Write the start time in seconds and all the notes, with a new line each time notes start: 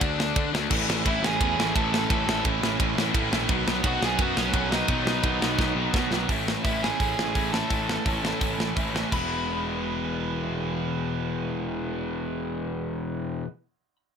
0.00 D2 D3 A3 D4 D5, kick, ride
0.18 D2 D3 A3 D4, snare
0.36 D3 A3 D4, kick, ride
0.52 D2 D3 A3 D4, snare
0.69 A1 A2 E3 A3 C#4 E4, kick, crash
0.87 A1 A2 E3 A3 C#4 E4, snare
1.04 A1 A2 E3 A3 C#4 E4 E5, kick, ride
1.21 A1 A2 E3 A3 C#4 E4 G#4, snare
1.26 G#5
1.38 E2 A2 E3 A3 C#4 E4, kick, ride
1.56 A1 A2 E3 A3 C#4 E4, snare
1.74 A1 A2 E3 A3 C#4 E4 A4 A5, kick, ride
1.90 A2 E3 A3 C#4 E4 A4 A5, snare
2.09 A1 A2 E3 A3 C#4 E4 A4 A5, kick, ride
2.26 A1 A2 E3 A3 C#4 E4, snare
2.44 A1 A2 E3 A3 C#4 E4, kick, ride
2.61 A1 A2 E3 A3 C#4 E4, snare
2.77 A1 A2 E3 A3 C#4 E4, kick, ride
2.95 A1 A2 E3 A3 C#4 E4, snare
3.13 A2 E3 A3 C#4 E4, kick, ride
3.30 A#1 A2 E3 A3 C#4 E4, snare
3.47 B1 B2 D#3 F#3 B3 D#4, kick, ride
3.64 B1 B2 D#3 F#3 B3 D#4, snare
3.83 B1 B2 D#3 F#3 B3 D#4 F#4, kick, ride
3.87 F#5
4.00 B1 B2 D#3 F#3 B3 D#4 G#4, snare
4.05 G#5
4.18 F#2 B2 D#3 F#3 B3 D#4 F#4, kick, ride
4.22 F#5
4.35 B1 B2 D#3 F#3 B3 C#4 D#4 C#5, snare
4.52 B1 B2 D#3 F#3 B3 D#4, kick, ride
4.71 B2 D#3 F#3 B3 D#4 D#5, snare
4.88 B1 B2 D#3 F#3 B3 D#4, kick, ride
5.06 B1 B2 D#3 F#3 B3 D#4, snare
5.23 B1 B2 D#3 F#3 B3 D#4, kick, ride
5.40 B1 B2 D#3 F#3 B3 D#4, snare
5.57 B1 B2 D#3 F#3 B3 D#4, kick, snare
5.75 B1 B2 D#3 F#3 B3 D#4
5.93 B2 D#3 F#3 B3 D#4, kick, snare
6.11 B1 B2 D#3 F#3 B3 D#4, snare
6.29 A1 A2 E3 A3 C#4 E4, kick, open hi-hat
6.48 snare
6.64 A1 A2 E3 A3 C#4 E4 E5, kick, open hi-hat
6.82 A2 E3 A3 C#4 E4 G#4 G#5, snare
6.99 A1 A2 E3 A3 C#4 E4, kick, open hi-hat
7.19 A1, snare
7.34 A1 A2 E3 A3 C#4 E4, kick, open hi-hat
7.52 A2 E3 A3 C#4 E4 A4 A5, snare
7.69 A1 A2 E3 A3 C#4 E4, kick, open hi-hat
7.89 snare
8.05 A1 A2 E3 A3 C#4 E4, kick, open hi-hat
8.22 A2 E3 A3 C#4 E4, snare
8.40 A1 A2 E3 A3 C#4 E4, kick, open hi-hat
8.58 A1, snare
8.76 A1 A2 E3 A3 C#4 E4, kick, open hi-hat
8.93 A2 E3 A3 C#4 E4, snare
9.11 E1 E2 B2 E3 G#3 B3 B5, kick, crash
9.15 E3 E4